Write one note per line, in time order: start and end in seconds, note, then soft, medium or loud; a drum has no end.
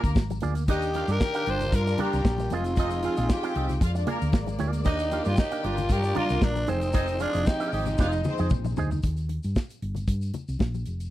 0.00 0.11 A#3 medium
0.00 muted clean electric guitar stroke soft
0.00 kick medium
0.00 shaker medium
0.04 0.14 D2 medium
0.04 closed hi-hat soft
0.15 0.38 G#1 loud
0.15 muted clean electric guitar stroke soft
0.15 kick loud
0.15 snare loud
0.15 high conga medium
0.15 shaker medium
0.30 muted clean electric guitar stroke soft
0.30 closed hi-hat soft
0.30 high conga medium
0.30 shaker medium
0.40 0.68 D2 medium
0.40 0.63 A#3 medium
0.40 0.56 F4 medium
0.40 0.56 G#4 medium
0.40 0.55 D5 medium
0.40 closed hi-hat medium
0.40 high conga medium
0.40 shaker medium
0.55 muted clean electric guitar stroke soft
0.55 closed hi-hat medium
0.55 shaker medium
0.67 1.02 D#2 loud
0.67 1.45 D#3 medium
0.67 1.45 A#3 medium
0.67 2.49 D4 medium
0.67 0.89 D4 loud
0.67 0.79 D#4 loud
0.67 1.45 G4 medium
0.67 0.82 G4 medium
0.67 0.81 A#4 medium
0.67 0.81 D5 loud
0.67 0.80 D#5 loud
0.67 kick loud
0.67 closed hi-hat medium
0.67 muted conga medium
0.67 shaker medium
0.71 1.13 G4 loud
0.82 muted clean electric guitar stroke medium
0.82 closed hi-hat soft
0.82 shaker medium
0.94 1.09 D4 medium
0.94 1.05 F4 medium
0.94 1.09 G4 medium
0.94 1.08 A#4 medium
0.94 1.06 F5 medium
0.94 1.09 F5 medium
0.94 closed hi-hat medium
0.94 muted conga soft
0.94 shaker medium
1.08 1.19 G2 medium
1.08 1.19 D4 medium
1.08 1.20 G4 medium
1.08 1.20 A#4 medium
1.08 1.52 A#4 loud
1.08 1.20 D5 medium
1.08 closed hi-hat soft
1.08 shaker medium
1.20 1.70 G4 loud
1.20 1.70 G5 loud
1.20 kick loud
1.20 snare loud
1.20 high conga medium
1.20 shaker medium
1.34 1.46 D4 medium
1.34 1.47 G4 medium
1.34 1.47 A#4 medium
1.34 1.48 F5 medium
1.34 closed hi-hat medium
1.34 shaker soft
1.45 1.69 G1 loud
1.45 2.50 G3 medium
1.45 1.64 D4 medium
1.45 2.50 F4 medium
1.45 1.60 F4 medium
1.45 2.49 A#4 medium
1.45 1.60 A#4 medium
1.45 1.59 D5 medium
1.45 closed hi-hat medium
1.50 1.77 C5 loud
1.60 muted clean electric guitar stroke soft
1.60 closed hi-hat medium
1.60 low conga medium
1.60 shaker medium
1.72 1.95 G2 loud
1.72 1.84 F4 medium
1.72 2.03 A#4 loud
1.72 1.84 F5 loud
1.72 muted clean electric guitar stroke soft
1.72 kick loud
1.72 closed hi-hat medium
1.72 shaker medium
1.87 1.97 D4 medium
1.87 1.97 D5 medium
1.87 muted clean electric guitar stroke soft
1.87 closed hi-hat soft
1.87 shaker medium
1.98 2.21 A#3 loud
1.98 2.20 D4 medium
1.98 2.13 F4 medium
1.98 2.56 G4 medium
1.98 2.13 A#4 medium
1.98 2.21 A#4 loud
1.98 2.13 D5 medium
1.98 closed hi-hat medium
1.98 muted conga medium
1.98 low conga medium
2.13 2.23 C2 medium
2.13 muted clean electric guitar stroke soft
2.13 closed hi-hat soft
2.13 shaker medium
2.25 2.47 A#1 loud
2.25 muted clean electric guitar stroke soft
2.25 kick loud
2.25 snare loud
2.25 high conga medium
2.25 shaker medium
2.38 muted clean electric guitar stroke soft
2.38 closed hi-hat soft
2.38 high conga medium
2.38 shaker medium
2.50 3.07 F1 medium
2.50 3.80 F3 medium
2.50 3.80 G#3 medium
2.50 3.80 C4 medium
2.50 2.73 C4 medium
2.50 3.81 D#4 medium
2.50 2.66 F4 loud
2.50 4.09 F4 medium
2.50 2.65 G#4 medium
2.50 2.65 D#5 loud
2.50 closed hi-hat medium
2.50 high conga medium
2.50 shaker medium
2.64 muted clean electric guitar stroke medium
2.64 closed hi-hat medium
2.64 shaker medium
2.76 2.99 C4 loud
2.76 2.88 D#4 loud
2.76 2.91 F4 medium
2.76 2.91 G#4 medium
2.76 2.88 D#5 loud
2.76 2.91 D#5 loud
2.76 kick loud
2.76 closed hi-hat medium
2.76 muted conga medium
2.76 shaker medium
2.90 muted clean electric guitar stroke medium
2.90 closed hi-hat soft
2.90 shaker medium
3.02 3.17 C4 medium
3.02 3.14 F4 medium
3.02 3.17 F4 medium
3.02 3.16 G#4 medium
3.02 3.14 F5 medium
3.02 3.17 F5 medium
3.02 closed hi-hat medium
3.02 muted conga medium
3.02 shaker medium
3.17 3.28 A#1 loud
3.17 3.28 C4 medium
3.17 3.29 F4 medium
3.17 3.29 G#4 medium
3.17 3.30 D#5 medium
3.17 closed hi-hat medium
3.17 shaker medium
3.29 3.78 G4 loud
3.29 3.78 G5 loud
3.29 muted clean electric guitar stroke soft
3.29 kick loud
3.29 snare loud
3.29 high conga medium
3.29 shaker medium
3.43 3.54 C4 medium
3.43 3.55 F4 medium
3.43 3.55 G#4 medium
3.43 3.56 F5 medium
3.43 closed hi-hat medium
3.43 shaker soft
3.56 3.78 C2 loud
3.56 3.72 C4 medium
3.56 3.69 F4 medium
3.56 3.69 G#4 medium
3.56 3.68 D#5 medium
3.56 closed hi-hat medium
3.69 muted clean electric guitar stroke soft
3.69 snare soft
3.69 closed hi-hat medium
3.69 low conga medium
3.69 shaker medium
3.81 4.04 F2 loud
3.81 4.85 G#3 medium
3.81 4.85 A#3 medium
3.81 3.93 F4 medium
3.81 5.63 D5 medium
3.81 3.93 F5 medium
3.81 muted clean electric guitar stroke medium
3.81 kick loud
3.81 closed hi-hat medium
3.81 muted conga soft
3.81 shaker medium
3.95 4.06 D4 medium
3.95 4.05 D5 medium
3.95 muted clean electric guitar stroke soft
3.95 closed hi-hat soft
3.95 shaker medium
4.07 4.28 A#3 loud
4.07 4.29 A#3 medium
4.07 4.20 F4 medium
4.07 4.20 G#4 medium
4.07 4.28 A#4 loud
4.07 4.19 D5 medium
4.07 closed hi-hat medium
4.07 muted conga medium
4.07 low conga medium
4.20 4.32 D2 loud
4.20 muted clean electric guitar stroke soft
4.20 closed hi-hat soft
4.20 shaker medium
4.33 4.56 G#1 loud
4.33 muted clean electric guitar stroke soft
4.33 kick loud
4.33 snare loud
4.33 high conga loud
4.33 shaker medium
4.47 muted clean electric guitar stroke soft
4.47 closed hi-hat soft
4.47 high conga medium
4.47 shaker medium
4.59 4.86 D2 medium
4.59 4.80 A#3 medium
4.59 4.73 F4 medium
4.59 4.72 G#4 medium
4.59 4.72 D5 loud
4.59 closed hi-hat medium
4.59 high conga medium
4.59 shaker medium
4.73 muted clean electric guitar stroke soft
4.73 closed hi-hat medium
4.73 shaker medium
4.84 5.20 D#2 loud
4.84 5.63 D#3 medium
4.84 5.63 A#3 medium
4.84 5.06 D4 medium
4.84 4.97 D#4 loud
4.84 5.29 D#4 loud
4.84 5.00 G4 medium
4.84 5.64 G4 medium
4.84 4.99 A#4 medium
4.84 4.99 D5 loud
4.84 4.97 D#5 loud
4.84 kick loud
4.84 closed hi-hat medium
4.84 muted conga medium
4.84 shaker medium
4.99 muted clean electric guitar stroke soft
4.99 closed hi-hat soft
4.99 shaker medium
5.11 5.25 D4 medium
5.11 5.22 F4 medium
5.11 5.25 G4 medium
5.11 5.24 A#4 medium
5.11 5.23 F5 medium
5.11 5.25 F5 medium
5.11 closed hi-hat medium
5.11 muted conga medium
5.11 shaker medium
5.25 5.36 G2 loud
5.25 5.36 D4 medium
5.25 5.39 F4 loud
5.25 5.37 G4 medium
5.25 5.37 A#4 medium
5.25 5.37 D5 medium
5.25 closed hi-hat soft
5.25 shaker medium
5.37 5.67 D#4 loud
5.37 5.87 G4 loud
5.37 5.87 G5 loud
5.37 kick loud
5.37 snare loud
5.37 high conga medium
5.37 shaker medium
5.51 5.62 D4 medium
5.51 5.63 G4 medium
5.51 5.63 A#4 medium
5.51 5.64 F5 medium
5.51 closed hi-hat medium
5.51 shaker medium
5.63 5.86 G1 loud
5.63 6.68 G3 medium
5.63 5.81 D4 medium
5.63 6.67 D4 medium
5.63 5.77 F4 medium
5.63 6.67 F4 medium
5.63 5.94 F4 loud
5.63 5.77 A#4 medium
5.63 6.68 A#4 loud
5.63 5.77 D5 medium
5.63 closed hi-hat medium
5.77 muted clean electric guitar stroke soft
5.77 closed hi-hat medium
5.77 low conga medium
5.77 shaker medium
5.89 6.12 G2 loud
5.89 6.01 F4 medium
5.89 6.19 G4 loud
5.89 6.01 F5 loud
5.89 muted clean electric guitar stroke medium
5.89 kick loud
5.89 closed hi-hat medium
5.89 shaker medium
6.03 6.14 D4 medium
6.03 6.14 D5 medium
6.03 muted clean electric guitar stroke soft
6.03 closed hi-hat soft
6.03 shaker medium
6.15 6.37 A#3 loud
6.15 6.37 D4 medium
6.15 6.29 F4 loud
6.15 6.45 F4 loud
6.15 6.28 A#4 loud
6.15 6.37 A#4 loud
6.15 6.28 D5 medium
6.15 closed hi-hat medium
6.15 muted conga medium
6.15 low conga medium
6.29 6.41 C2 medium
6.29 muted clean electric guitar stroke medium
6.29 closed hi-hat soft
6.29 shaker medium
6.41 6.64 A#1 loud
6.41 6.71 D4 loud
6.41 muted clean electric guitar stroke soft
6.41 kick loud
6.41 snare loud
6.41 high conga medium
6.41 shaker medium
6.55 muted clean electric guitar stroke soft
6.55 closed hi-hat soft
6.55 high conga medium
6.55 shaker soft
6.67 7.25 F1 medium
6.67 9.01 F3 medium
6.67 9.01 G#3 medium
6.67 9.01 C4 medium
6.67 7.23 C4 medium
6.67 6.89 D#4 medium
6.67 9.01 D#4 medium
6.67 6.82 G#4 medium
6.67 6.81 C5 medium
6.67 6.81 D#5 medium
6.67 closed hi-hat medium
6.67 high conga medium
6.67 shaker medium
6.81 muted clean electric guitar stroke soft
6.81 closed hi-hat medium
6.81 shaker medium
6.93 7.15 D#4 loud
6.93 7.05 D#4 loud
6.93 7.08 G#4 loud
6.93 7.07 C5 loud
6.93 7.05 D#5 loud
6.93 7.07 D#5 loud
6.93 kick loud
6.93 closed hi-hat medium
6.93 muted conga medium
6.93 shaker medium
7.07 muted clean electric guitar stroke soft
7.07 closed hi-hat soft
7.07 shaker medium
7.19 7.49 D4 loud
7.19 7.33 D#4 medium
7.19 7.31 F4 medium
7.19 7.33 G#4 medium
7.19 7.32 C5 medium
7.19 7.31 F5 medium
7.19 7.32 F5 medium
7.19 closed hi-hat medium
7.19 muted conga medium
7.19 shaker medium
7.33 7.45 F1 medium
7.33 7.45 D#4 soft
7.33 7.45 G#4 medium
7.33 7.46 C5 medium
7.33 7.46 D#5 medium
7.33 closed hi-hat medium
7.33 shaker medium
7.46 7.73 D#4 loud
7.46 7.96 G4 loud
7.46 7.96 G5 loud
7.46 kick loud
7.46 snare loud
7.46 high conga medium
7.46 shaker loud
7.60 7.71 D#4 medium
7.60 7.72 G#4 medium
7.60 7.72 C5 medium
7.60 7.73 F5 medium
7.60 closed hi-hat medium
7.60 shaker medium
7.72 7.95 G#1 medium
7.72 7.90 D#4 medium
7.72 8.48 D#4 medium
7.72 7.86 G#4 medium
7.72 7.86 C5 medium
7.72 7.86 D#5 medium
7.72 open hi-hat medium
7.72 shaker medium
7.86 muted clean electric guitar stroke soft
7.86 closed hi-hat medium
7.86 low conga medium
7.86 shaker medium
7.98 8.21 F1 loud
7.98 8.20 D#4 medium
7.98 8.10 F4 medium
7.98 8.13 G#4 medium
7.98 8.13 C5 medium
7.98 8.12 D#5 loud
7.98 8.10 F5 loud
7.98 kick loud
7.98 snare medium
7.98 muted conga soft
7.98 shaker medium
8.12 8.23 D#4 medium
8.12 8.23 D#5 medium
8.12 muted clean electric guitar stroke soft
8.12 shaker medium
8.24 8.47 C4 loud
8.24 8.47 C5 loud
8.24 muted clean electric guitar stroke soft
8.24 high tom medium
8.24 muted conga medium
8.24 low conga medium
8.24 shaker medium
8.38 8.50 F2 medium
8.38 8.51 D#4 medium
8.38 8.51 G#4 medium
8.38 8.52 C5 medium
8.38 8.52 D#5 medium
8.38 shaker medium
8.50 8.73 A#1 loud
8.50 muted clean electric guitar stroke medium
8.50 kick loud
8.50 mid tom loud
8.50 high conga medium
8.50 shaker medium
8.65 muted clean electric guitar stroke soft
8.65 mid tom medium
8.65 high conga medium
8.65 shaker medium
8.77 9.00 D2 medium
8.77 8.99 D#4 medium
8.77 8.91 G#4 medium
8.77 8.91 C5 medium
8.77 8.91 D#5 medium
8.77 floor tom loud
8.77 high conga medium
8.77 shaker medium
8.91 muted clean electric guitar stroke soft
8.91 floor tom medium
8.91 shaker medium
9.03 9.38 D#2 medium
9.03 kick loud
9.03 closed hi-hat medium
9.03 muted conga soft
9.03 shaker medium
9.17 closed hi-hat soft
9.17 shaker medium
9.29 closed hi-hat medium
9.29 muted conga soft
9.43 9.55 G2 medium
9.43 closed hi-hat soft
9.43 shaker soft
9.56 kick loud
9.56 snare medium
9.56 high conga medium
9.56 shaker medium
9.70 closed hi-hat medium
9.70 shaker soft
9.82 10.04 G1 medium
9.82 closed hi-hat medium
9.95 closed hi-hat soft
9.95 low conga medium
9.95 shaker medium
10.07 10.30 G2 medium
10.07 kick loud
10.07 closed hi-hat medium
10.07 shaker medium
10.22 closed hi-hat soft
10.22 shaker medium
10.34 closed hi-hat medium
10.34 muted conga medium
10.34 low conga medium
10.34 shaker soft
10.48 10.59 C2 medium
10.48 closed hi-hat soft
10.48 shaker medium
10.59 10.83 A#1 medium
10.59 kick loud
10.59 snare loud
10.59 high conga medium
10.59 shaker medium
10.74 closed hi-hat soft
10.74 high conga medium
10.74 shaker soft
10.86 11.10 F1 medium
10.86 closed hi-hat medium
10.86 shaker medium
11.00 closed hi-hat soft
11.00 shaker medium